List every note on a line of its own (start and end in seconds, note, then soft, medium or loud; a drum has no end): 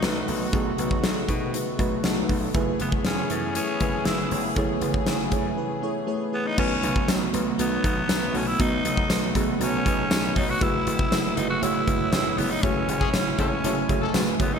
0.00 0.21 B1 medium
0.00 0.53 B2 medium
0.00 2.26 D#3 medium
0.00 2.51 D#3 medium
0.00 0.02 A3 loud
0.00 6.54 A3 medium
0.00 0.24 A3 medium
0.00 2.26 B3 medium
0.00 6.54 B3 medium
0.00 0.03 D#4 loud
0.00 0.25 D#4 medium
0.00 0.03 F#4 loud
0.00 2.26 F#4 medium
0.00 2.51 F#4 medium
0.00 0.25 F#4 medium
0.00 0.54 G#4 medium
0.00 0.03 B4 loud
0.00 0.25 B4 loud
0.00 snare loud
0.00 closed hi-hat medium
0.05 0.41 A3 medium
0.27 0.46 B1 medium
0.27 0.50 A3 medium
0.27 0.50 D#4 medium
0.27 0.50 F#4 medium
0.27 0.50 B4 medium
0.27 open hi-hat medium
0.52 0.71 B1 loud
0.52 1.25 B2 medium
0.52 0.75 A3 loud
0.52 0.75 D#4 loud
0.52 0.75 F#4 loud
0.52 0.75 G#4 loud
0.52 kick loud
0.52 closed hi-hat medium
0.78 0.97 B1 medium
0.78 1.00 A3 medium
0.78 1.00 D#4 medium
0.78 1.00 F#4 medium
0.78 1.01 B4 medium
0.78 closed hi-hat medium
0.91 kick medium
1.03 1.22 B1 medium
1.03 1.25 A3 medium
1.03 1.25 D#4 medium
1.03 1.26 F#4 medium
1.03 1.26 A4 medium
1.03 snare loud
1.03 closed hi-hat medium
1.29 1.56 B2 loud
1.29 1.51 A3 medium
1.29 1.51 D#4 medium
1.29 1.51 F#4 medium
1.29 1.51 B4 loud
1.29 kick medium
1.29 closed hi-hat medium
1.54 1.76 A3 medium
1.54 1.76 D#4 medium
1.54 1.76 F#4 medium
1.54 1.76 B4 loud
1.54 closed hi-hat medium
1.78 1.97 B1 medium
1.78 2.01 A3 loud
1.78 2.01 D#4 loud
1.78 2.01 F#4 loud
1.78 2.02 B4 loud
1.78 kick medium
1.78 closed hi-hat medium
2.04 2.23 B1 medium
2.04 2.26 A3 loud
2.04 2.26 D#4 loud
2.04 2.27 F#4 loud
2.04 2.27 A4 loud
2.04 snare loud
2.04 closed hi-hat medium
2.29 2.48 B1 loud
2.29 2.51 A3 medium
2.29 2.52 D#4 medium
2.29 2.52 F#4 medium
2.29 2.52 B4 loud
2.29 kick medium
2.29 open hi-hat medium
2.54 2.73 F#1 medium
2.54 6.29 E3 medium
2.54 6.54 E3 medium
2.54 2.77 A3 loud
2.54 6.29 C#4 medium
2.54 2.77 E4 loud
2.54 6.29 G#4 medium
2.54 4.54 G#4 medium
2.54 2.77 G#4 loud
2.54 2.77 B4 loud
2.54 kick loud
2.54 closed hi-hat medium
2.79 2.98 F#1 medium
2.79 3.02 A3 medium
2.79 2.92 B3 medium
2.79 3.02 E4 medium
2.79 3.02 G#4 medium
2.79 3.02 B4 medium
2.79 closed hi-hat medium
2.92 kick medium
3.05 3.24 F#1 loud
3.05 3.27 A3 medium
3.05 3.52 C#4 medium
3.05 3.27 E4 medium
3.05 3.27 G#4 medium
3.05 3.28 C#5 medium
3.05 snare loud
3.05 closed hi-hat medium
3.30 3.58 F#2 medium
3.30 3.52 A3 medium
3.30 3.53 E4 medium
3.30 3.53 G#4 medium
3.30 3.53 B4 medium
3.30 closed hi-hat medium
3.55 3.77 A3 medium
3.55 4.07 C#4 loud
3.55 3.78 E4 medium
3.55 3.78 G#4 medium
3.55 3.78 B4 medium
3.55 closed hi-hat loud
3.80 3.99 F#1 medium
3.80 4.03 A3 medium
3.80 4.03 E4 medium
3.80 4.03 G#4 medium
3.80 4.03 B4 loud
3.80 kick medium
3.80 closed hi-hat medium
4.05 4.24 F#1 medium
4.05 4.28 A3 medium
4.05 4.44 E4 medium
4.05 4.28 E4 medium
4.05 4.29 G#4 medium
4.05 4.29 B4 loud
4.05 snare loud
4.05 closed hi-hat medium
4.31 4.49 F#1 loud
4.31 4.53 A3 medium
4.31 4.53 E4 medium
4.31 4.54 G#4 medium
4.31 4.54 C#5 medium
4.31 open hi-hat medium
4.56 4.74 F#1 loud
4.56 4.79 A3 loud
4.56 4.79 E4 loud
4.56 6.56 G#4 medium
4.56 4.79 G#4 loud
4.56 4.79 C#5 loud
4.56 kick loud
4.56 closed hi-hat medium
4.81 5.00 F#1 loud
4.81 5.04 A3 medium
4.81 5.04 E4 medium
4.81 5.04 G#4 medium
4.81 5.04 B4 medium
4.81 closed hi-hat medium
4.94 kick medium
5.07 5.33 F#1 loud
5.07 5.29 A3 medium
5.07 5.29 E4 medium
5.07 5.29 G#4 medium
5.07 5.30 C#5 medium
5.07 snare loud
5.07 closed hi-hat medium
5.32 5.50 F#2 loud
5.32 5.54 A3 medium
5.32 5.54 E4 medium
5.32 5.54 G#4 medium
5.32 5.55 C#5 loud
5.32 kick medium
5.32 closed hi-hat medium
5.57 5.79 A3 medium
5.57 5.79 E4 medium
5.57 5.79 G#4 medium
5.57 5.80 B4 loud
5.82 6.04 A3 loud
5.82 6.05 E4 medium
5.82 6.05 G#4 loud
5.82 6.05 C#5 loud
6.07 6.29 A3 loud
6.07 6.30 E4 loud
6.07 6.30 G#4 loud
6.07 6.30 C#5 loud
6.32 6.55 A3 medium
6.32 6.48 B3 medium
6.32 6.55 E4 medium
6.32 6.55 G#4 medium
6.32 6.55 B4 medium
6.47 6.59 D#4 loud
6.57 6.76 B1 loud
6.57 7.30 B2 medium
6.57 10.57 D#3 medium
6.57 6.80 A3 loud
6.57 10.57 A3 medium
6.57 12.59 B3 medium
6.57 6.80 B3 medium
6.57 7.30 C#4 loud
6.57 6.80 D#4 medium
6.57 10.57 F#4 medium
6.57 6.80 F#4 loud
6.57 6.80 B4 loud
6.57 kick loud
6.57 crash loud
6.82 7.01 B1 loud
6.82 7.05 A3 medium
6.82 7.05 B3 medium
6.82 7.05 D#4 medium
6.82 7.05 F#4 medium
6.82 7.05 B4 medium
6.82 closed hi-hat medium
6.96 kick medium
7.08 7.27 B1 medium
7.08 7.30 A3 medium
7.08 7.30 B3 medium
7.08 7.31 D#4 medium
7.08 7.31 F#4 medium
7.08 7.31 C#5 medium
7.08 snare loud
7.08 closed hi-hat medium
7.08 tambourine medium
7.33 7.52 B1 loud
7.33 7.56 A3 medium
7.33 7.56 B3 medium
7.33 7.56 D#4 medium
7.33 7.56 F#4 medium
7.33 7.56 B4 loud
7.33 closed hi-hat medium
7.58 7.77 B1 loud
7.58 7.80 A3 loud
7.58 7.81 B3 medium
7.58 8.38 B3 loud
7.58 7.81 D#4 medium
7.58 7.81 F#4 medium
7.58 7.81 B4 loud
7.58 closed hi-hat loud
7.83 8.02 B1 medium
7.83 8.06 A3 medium
7.83 8.06 B3 medium
7.83 8.06 D#4 medium
7.83 8.06 F#4 medium
7.83 8.06 B4 medium
7.83 kick medium
7.83 closed hi-hat medium
8.08 8.28 B1 loud
8.08 8.31 A3 medium
8.08 8.31 B3 medium
8.08 8.31 D#4 medium
8.08 8.31 F#4 medium
8.08 8.32 B4 medium
8.08 snare loud
8.08 closed hi-hat medium
8.08 tambourine medium
8.33 8.52 B1 loud
8.33 8.56 A3 medium
8.33 8.56 B3 medium
8.33 8.50 C#4 loud
8.33 8.56 D#4 medium
8.33 8.57 F#4 medium
8.33 8.57 A4 medium
8.33 open hi-hat medium
8.48 8.62 E4 loud
8.59 8.78 B1 loud
8.59 9.31 B2 medium
8.59 8.82 A3 loud
8.59 8.82 B3 loud
8.59 8.82 D#4 loud
8.59 9.36 D#4 loud
8.59 8.82 F#4 loud
8.59 8.82 B4 loud
8.59 kick loud
8.59 closed hi-hat medium
8.84 9.03 B1 loud
8.84 9.07 A3 medium
8.84 9.07 B3 medium
8.84 9.07 D#4 medium
8.84 9.07 F#4 medium
8.84 9.07 B4 medium
8.84 closed hi-hat medium
8.97 kick medium
9.09 9.28 B1 loud
9.09 9.32 A3 medium
9.09 9.32 B3 medium
9.09 9.32 D#4 medium
9.09 9.32 F#4 medium
9.09 9.33 B4 medium
9.09 snare loud
9.09 closed hi-hat loud
9.09 tambourine medium
9.35 9.53 B1 loud
9.35 9.57 A3 medium
9.35 9.57 B3 medium
9.35 9.57 D#4 medium
9.35 9.58 F#4 medium
9.35 9.58 G#4 loud
9.35 kick medium
9.35 closed hi-hat medium
9.59 9.79 B1 loud
9.59 9.82 A3 loud
9.59 9.82 B3 medium
9.59 10.33 C#4 loud
9.59 9.82 D#4 medium
9.59 9.83 F#4 loud
9.59 9.83 A4 loud
9.59 closed hi-hat medium
9.85 10.04 B1 medium
9.85 10.07 A3 medium
9.85 10.08 B3 medium
9.85 10.08 D#4 medium
9.85 10.08 F#4 medium
9.85 10.08 B4 medium
9.85 kick medium
9.85 closed hi-hat medium
10.10 10.29 B1 medium
10.10 10.33 A3 medium
10.10 10.33 B3 medium
10.10 10.33 D#4 medium
10.10 10.33 F#4 medium
10.10 10.33 G#4 medium
10.10 snare loud
10.10 closed hi-hat medium
10.10 tambourine medium
10.36 10.54 B1 medium
10.36 10.58 A3 medium
10.36 10.58 B3 medium
10.36 10.51 D#4 loud
10.36 10.58 D#4 medium
10.36 10.59 F#4 medium
10.36 10.59 C#5 medium
10.36 kick medium
10.36 open hi-hat medium
10.50 10.64 F#4 loud
10.60 10.79 F#1 loud
10.60 14.59 A2 medium
10.60 14.59 G#3 medium
10.60 10.83 A3 loud
10.60 14.59 E4 medium
10.60 10.83 E4 loud
10.60 11.38 E4 loud
10.60 10.83 F#4 loud
10.60 10.84 G#4 loud
10.60 10.84 B4 loud
10.60 kick loud
10.60 closed hi-hat medium
10.86 11.05 F#1 loud
10.86 11.09 A3 medium
10.86 11.09 E4 medium
10.86 11.09 F#4 medium
10.86 11.09 G#4 medium
10.86 11.09 B4 medium
10.86 closed hi-hat medium
10.99 kick loud
11.11 11.30 F#1 loud
11.11 11.34 A3 medium
11.11 11.34 E4 medium
11.11 11.34 F#4 medium
11.11 11.34 G#4 medium
11.11 11.34 B4 medium
11.11 snare loud
11.11 closed hi-hat loud
11.11 tambourine medium
11.36 11.55 F#1 loud
11.36 11.59 A3 medium
11.36 11.49 D#4 loud
11.36 11.59 E4 medium
11.36 11.59 F#4 medium
11.36 11.59 G#4 medium
11.36 11.59 B4 medium
11.36 closed hi-hat medium
11.50 11.64 F#4 loud
11.61 11.80 F#1 loud
11.61 11.84 A3 loud
11.61 11.84 E4 loud
11.61 12.40 E4 loud
11.61 11.84 F#4 medium
11.61 11.84 G#4 medium
11.61 11.85 C#5 loud
11.61 closed hi-hat loud
11.87 12.06 F#1 medium
11.87 12.09 A3 medium
11.87 12.09 E4 medium
11.87 12.10 F#4 medium
11.87 12.10 G#4 medium
11.87 12.10 B4 medium
11.87 kick medium
11.87 closed hi-hat medium
12.12 12.31 F#1 loud
12.12 12.35 A3 medium
12.12 12.35 E4 medium
12.12 12.35 F#4 medium
12.12 12.35 G#4 medium
12.12 12.35 B4 medium
12.12 snare loud
12.12 closed hi-hat medium
12.12 tambourine medium
12.37 12.56 F#1 loud
12.37 12.60 A3 medium
12.37 12.52 B3 medium
12.37 12.60 E4 medium
12.37 12.60 F#4 medium
12.37 12.60 G#4 medium
12.37 12.60 C#5 medium
12.37 open hi-hat medium
12.51 12.64 D#4 loud
12.63 12.81 F#1 loud
12.63 12.85 A3 loud
12.63 13.39 C#4 loud
12.63 14.59 C#4 medium
12.63 12.85 E4 medium
12.63 12.86 F#4 loud
12.63 12.86 G#4 loud
12.63 12.86 C#5 loud
12.63 kick loud
12.63 closed hi-hat medium
12.88 13.06 F#1 loud
12.88 13.10 A3 medium
12.88 13.11 F#4 medium
12.88 13.11 G#4 medium
12.88 13.11 C#5 medium
12.88 closed hi-hat medium
13.01 13.09 E3 medium
13.01 13.09 C#4 medium
13.01 13.09 G#4 loud
13.01 kick medium
13.14 13.32 F#1 loud
13.14 13.36 A3 medium
13.14 13.36 E4 medium
13.14 13.36 F#4 medium
13.14 13.36 G#4 medium
13.14 13.36 C#5 medium
13.14 snare loud
13.14 closed hi-hat loud
13.14 tambourine medium
13.38 13.57 F#1 loud
13.38 13.50 E3 medium
13.38 13.61 A3 medium
13.38 13.50 C#4 medium
13.38 14.11 C#4 medium
13.38 13.61 E4 medium
13.38 13.61 F#4 medium
13.38 13.61 G#4 medium
13.38 13.50 A4 loud
13.38 13.61 C#5 medium
13.38 kick medium
13.38 closed hi-hat medium
13.64 13.82 F#1 loud
13.64 13.75 E3 medium
13.64 13.86 A3 loud
13.64 13.75 C#4 medium
13.64 13.86 E4 medium
13.64 13.86 F#4 medium
13.64 13.86 G#4 medium
13.64 13.75 A4 medium
13.64 13.87 C#5 loud
13.64 closed hi-hat loud
13.89 14.07 F#1 loud
13.89 14.11 A3 medium
13.89 14.11 E4 medium
13.89 14.12 F#4 medium
13.89 14.12 G#4 medium
13.89 14.12 C#5 medium
13.89 kick medium
13.89 closed hi-hat medium
14.02 14.18 E3 medium
14.02 14.18 C#4 medium
14.02 14.18 A4 loud
14.14 14.33 F#1 loud
14.14 14.36 A3 medium
14.14 14.36 E4 medium
14.14 14.37 F#4 medium
14.14 14.37 G#4 medium
14.14 14.37 B4 loud
14.14 snare loud
14.14 closed hi-hat medium
14.14 tambourine medium
14.39 14.58 F#1 loud
14.39 14.59 A3 medium
14.39 14.55 B3 medium
14.39 14.59 E4 medium
14.39 14.59 F#4 medium
14.39 14.59 G#4 medium
14.39 14.59 C#5 medium
14.39 kick medium
14.39 closed hi-hat medium
14.54 14.59 D#4 loud